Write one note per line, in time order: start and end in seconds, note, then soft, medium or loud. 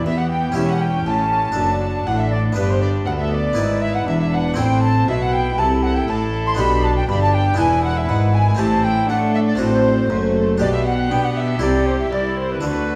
0.00 0.51 B3 soft
0.00 0.52 E4 soft
0.00 0.53 G4 soft
0.05 0.56 E2 soft
0.05 0.52 E3 soft
0.05 0.56 E3 soft
0.05 0.56 B3 soft
0.05 1.54 G4 medium
0.05 0.19 E5 medium
0.05 0.18 E5 medium
0.17 0.29 F#5 medium
0.17 0.31 F#5 soft
0.30 0.57 G5 medium
0.30 0.56 G5 soft
0.52 1.51 C#4 soft
0.52 1.52 E4 soft
0.52 1.53 G4 soft
0.52 0.68 E5 medium
0.56 1.06 E1 soft
0.56 1.03 E2 soft
0.56 1.06 E2 soft
0.56 1.05 C#4 soft
0.56 0.69 E5 medium
0.69 0.81 F#5 soft
0.69 0.83 F#5 medium
0.81 1.05 G5 medium
0.81 1.07 G5 soft
1.06 1.56 A1 soft
1.06 1.53 A2 soft
1.06 1.56 A2 soft
1.06 1.56 C#4 soft
1.06 1.75 A5 medium
1.06 2.07 A5 medium
1.52 2.52 D4 soft
1.52 2.52 A4 soft
1.56 2.06 F#1 soft
1.56 2.03 F#2 soft
1.56 2.06 F#2 soft
1.56 2.55 D4 soft
1.56 2.06 F#4 soft
2.06 2.56 A1 soft
2.06 2.56 A2 soft
2.06 2.53 A2 soft
2.06 2.56 A4 soft
2.06 2.19 F#5 medium
2.06 2.21 F#5 medium
2.19 2.32 E5 soft
2.19 2.33 E5 medium
2.31 2.57 D5 medium
2.31 2.40 D5 medium
2.52 3.52 B3 soft
2.52 3.53 D4 soft
2.52 3.54 B4 soft
2.57 3.06 G1 medium
2.57 3.06 G2 medium
2.57 3.03 G2 soft
2.57 3.06 D4 soft
2.57 3.07 G4 medium
2.57 2.69 B4 medium
2.57 2.71 B4 medium
2.69 2.82 C5 medium
2.81 2.89 D5 soft
2.81 2.88 D5 medium
3.06 3.57 D2 soft
3.06 3.54 D2 soft
3.06 3.57 D2 soft
3.06 3.58 B3 soft
3.06 3.57 A4 medium
3.06 3.12 F#5 medium
3.06 3.13 F#5 medium
3.19 3.32 E5 soft
3.19 3.34 E5 medium
3.32 3.82 D5 medium
3.32 3.83 D5 medium
3.53 4.53 B3 soft
3.53 4.54 E4 soft
3.53 4.54 B4 soft
3.57 4.07 G#1 soft
3.57 4.07 G#2 medium
3.57 4.04 G#2 soft
3.57 4.08 E4 soft
3.57 4.56 B4 medium
3.82 3.97 E5 medium
3.82 3.95 E5 medium
3.95 4.08 F#5 medium
3.95 4.07 F#5 medium
4.07 4.57 E1 soft
4.07 4.57 E2 medium
4.07 4.54 E2 soft
4.07 4.58 D4 soft
4.07 4.13 E5 medium
4.07 4.20 E5 medium
4.20 4.33 E5 medium
4.20 4.27 E5 medium
4.32 4.58 F#5 medium
4.32 4.40 F#5 medium
4.54 6.53 C4 soft
4.54 6.53 E4 soft
4.54 6.54 A4 soft
4.54 4.83 G5 medium
4.58 5.08 A1 medium
4.58 5.08 A2 medium
4.58 5.04 A2 soft
4.58 5.08 C4 soft
4.58 5.08 C5 medium
4.58 4.83 G5 medium
4.83 5.08 A5 medium
5.08 5.59 B1 medium
5.08 5.54 B2 soft
5.08 5.59 B2 medium
5.08 5.57 E4 soft
5.08 5.59 B4 medium
5.08 5.21 E5 medium
5.08 5.15 E5 medium
5.21 5.34 F#5 medium
5.21 5.35 F#5 medium
5.33 5.58 G5 medium
5.33 5.61 G5 medium
5.58 6.08 C2 medium
5.58 6.04 C3 soft
5.58 6.08 C3 medium
5.58 6.57 E4 soft
5.58 7.09 A4 medium
5.58 5.66 A5 medium
5.58 5.84 A5 medium
5.83 5.99 F#5 medium
5.83 5.96 F#5 medium
5.96 6.08 G5 medium
6.08 6.58 A1 medium
6.08 6.55 A2 soft
6.08 6.58 A2 medium
6.08 6.15 A5 medium
6.08 6.34 A5 medium
6.47 6.58 C6 medium
6.47 6.52 C6 medium
6.55 7.53 B3 soft
6.55 7.54 D4 soft
6.55 7.07 D4 medium
6.55 7.55 G4 soft
6.59 7.09 B1 medium
6.59 7.09 B2 medium
6.59 7.05 B2 soft
6.59 6.85 B5 medium
6.59 6.84 B5 medium
6.84 6.96 A5 medium
6.84 6.97 A5 medium
6.97 7.09 G5 medium
6.97 7.08 G5 medium
7.08 7.58 G1 medium
7.08 7.58 G2 medium
7.08 7.55 G2 soft
7.08 7.58 D4 medium
7.08 7.58 G4 medium
7.08 7.21 B5 medium
7.08 7.15 B5 medium
7.22 7.34 A5 medium
7.22 7.36 A5 medium
7.34 7.58 G5 medium
7.54 8.54 B3 soft
7.54 8.55 D4 soft
7.54 8.55 E4 soft
7.58 8.08 E1 medium
7.58 8.05 E2 soft
7.58 8.08 E2 medium
7.58 8.58 E4 medium
7.58 8.60 B4 medium
7.58 7.84 G#5 medium
7.84 7.96 F#5 medium
7.84 7.99 F#5 medium
7.97 8.09 E5 medium
7.97 8.11 E5 medium
8.09 8.60 G#1 medium
8.09 8.55 G#2 soft
8.09 8.59 G#2 medium
8.09 8.36 F#5 medium
8.09 8.17 F#5 medium
8.34 8.59 G#5 medium
8.34 8.61 G#5 medium
8.55 9.09 A3 soft
8.55 9.55 C4 soft
8.55 9.56 G4 soft
8.59 9.09 A1 medium
8.59 9.06 A2 soft
8.59 9.09 A2 medium
8.59 9.08 E4 medium
8.59 9.09 C5 medium
8.59 8.84 A5 medium
8.59 8.86 A5 medium
8.83 9.09 G5 medium
8.83 9.10 G5 medium
9.09 9.59 A2 medium
9.09 9.54 A3 soft
9.09 9.59 A3 medium
9.09 9.60 D4 medium
9.09 9.59 A4 medium
9.09 9.33 F#5 medium
9.09 9.17 F#5 medium
9.34 9.40 E5 medium
9.34 9.39 E5 medium
9.47 9.60 D5 medium
9.47 9.61 D5 medium
9.55 10.56 A3 soft
9.55 10.56 D4 soft
9.55 10.57 F#4 soft
9.60 10.09 A1 medium
9.60 10.10 A2 medium
9.60 10.07 A2 soft
9.60 10.11 C4 soft
9.60 10.09 A4 medium
9.60 10.46 C5 medium
9.60 10.35 C5 medium
10.10 10.60 F#1 medium
10.10 10.57 F#2 soft
10.10 10.60 F#2 medium
10.10 10.61 A3 soft
10.10 10.35 F#4 soft
10.36 10.61 A4 medium
10.58 11.11 B1 medium
10.58 11.07 B2 soft
10.58 11.11 B2 medium
10.58 11.10 B3 medium
10.58 11.57 D4 soft
10.58 11.58 G4 soft
10.58 12.59 G4 medium
10.58 10.72 D5 medium
10.58 10.67 D5 medium
10.73 10.86 E5 medium
10.85 11.10 F#5 medium
10.85 10.92 F#5 medium
11.11 11.62 B2 medium
11.11 11.62 B3 soft
11.11 11.58 B3 soft
11.11 11.62 D4 soft
11.11 11.24 G5 medium
11.11 11.23 G5 medium
11.23 11.36 F#5 medium
11.23 11.30 F#5 medium
11.36 11.60 E5 medium
11.36 11.62 E5 medium
11.59 12.11 C2 medium
11.59 12.09 C3 soft
11.59 12.12 C3 medium
11.59 12.59 E4 soft
11.59 12.13 G4 soft
11.59 12.60 A4 soft
11.59 11.88 D5 medium
11.59 11.70 D5 medium
11.86 11.99 C5 medium
11.86 11.93 C5 medium
11.99 12.11 E5 medium
11.99 12.12 E5 soft
12.12 12.62 C2 soft
12.12 12.60 C2 soft
12.12 12.63 C2 medium
12.12 12.63 E4 soft
12.12 12.39 D5 medium
12.12 12.38 D5 soft
12.37 12.50 C5 medium
12.51 12.62 B4 medium
12.51 12.63 B4 soft
12.61 12.95 D2 soft
12.61 12.95 D3 soft
12.61 12.95 D4 soft
12.61 12.95 F#4 soft
12.61 12.95 A4 soft
12.61 12.95 B4 medium